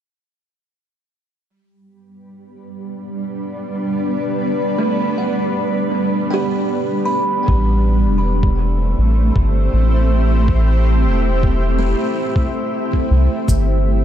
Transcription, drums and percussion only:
7.48 kick
8.43 kick
9.36 kick
10.48 kick
11.43 kick
12.36 kick
12.93 kick
13.48 kick, cabasa

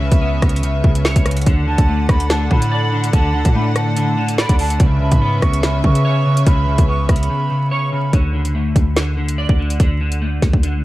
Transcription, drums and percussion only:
0.12 kick, closed hi-hat
0.42 kick, cross-stick, closed hi-hat
0.49 closed hi-hat
0.56 closed hi-hat
0.63 closed hi-hat
0.84 kick
0.95 closed hi-hat
1.05 snare
1.16 kick, closed hi-hat
1.26 cross-stick, closed hi-hat
1.31 closed hi-hat
1.37 closed hi-hat
1.41 closed hi-hat
1.46 kick, closed hi-hat
1.78 kick, closed hi-hat
2.09 kick, cross-stick, closed hi-hat
2.20 closed hi-hat
2.30 snare, closed hi-hat
2.51 kick
2.62 closed hi-hat
3.04 closed hi-hat
3.13 kick, closed hi-hat
3.45 kick, closed hi-hat
3.76 cross-stick, closed hi-hat
3.97 closed hi-hat
4.28 closed hi-hat
4.38 snare
4.49 kick, closed hi-hat
4.59 open hi-hat
4.70 closed hi-hat
4.80 kick, closed hi-hat
5.12 kick, closed hi-hat
5.42 kick, cross-stick, closed hi-hat
5.54 closed hi-hat
5.63 snare, closed hi-hat
5.84 kick
5.95 closed hi-hat
6.37 closed hi-hat
6.46 kick, closed hi-hat
6.78 kick, closed hi-hat
7.09 kick, cross-stick, closed hi-hat
7.16 closed hi-hat
7.23 closed hi-hat
8.13 kick, closed hi-hat
8.45 closed hi-hat
8.76 kick, closed hi-hat
8.97 snare, closed hi-hat
9.29 closed hi-hat
9.49 kick
9.70 closed hi-hat
9.80 kick, closed hi-hat
10.12 closed hi-hat
10.42 kick, snare, closed hi-hat
10.53 kick
10.63 closed hi-hat

